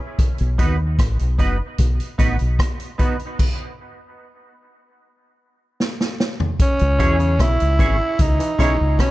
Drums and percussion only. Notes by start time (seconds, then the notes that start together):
0.19 kick, closed hi-hat
0.38 closed hi-hat
0.59 kick, closed hi-hat
0.99 kick, cross-stick, closed hi-hat
1.19 closed hi-hat
1.39 kick, closed hi-hat
1.78 kick, closed hi-hat
2.00 closed hi-hat
2.19 kick, closed hi-hat
2.39 closed hi-hat
2.59 kick, cross-stick, closed hi-hat
2.80 closed hi-hat
2.99 kick, closed hi-hat
3.19 closed hi-hat
3.39 kick, crash
5.80 snare
6.01 snare
6.20 snare
6.40 floor tom
6.59 kick, closed hi-hat
6.79 closed hi-hat
7.00 kick, closed hi-hat
7.20 closed hi-hat
7.39 kick, cross-stick, closed hi-hat
7.60 closed hi-hat
7.79 kick, closed hi-hat
8.19 kick, closed hi-hat
8.40 closed hi-hat
8.59 kick, cross-stick, closed hi-hat
8.99 kick, cross-stick, closed hi-hat